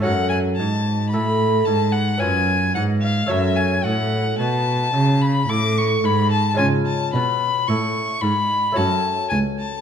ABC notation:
X:1
M:3/4
L:1/16
Q:1/4=55
K:F#m
V:1 name="Violin"
f g a2 b2 a f g2 f ^e | e g f2 a3 b d' c' b a | g a b2 c'2 b2 a2 g a |]
V:2 name="Lute"
[A,CF]8 [B,C^E]4 | [A,CF]12 | [G,C^E]8 [A,CF]4 |]
V:3 name="Lute" clef=bass
F,,2 G,,2 A,,2 G,,2 F,,2 G,,2 | F,,2 A,,2 B,,2 C,2 A,,2 G,,2 | C,2 B,,2 A,,2 G,,2 F,,2 z2 |]
V:4 name="Cello" clef=bass
F,,2 G,,2 A,,2 G,,2 F,,2 G,,2 | F,,2 A,,2 B,,2 C,2 A,,2 G,,2 | C,2 B,,2 A,,2 G,,2 F,,2 C,,2 |]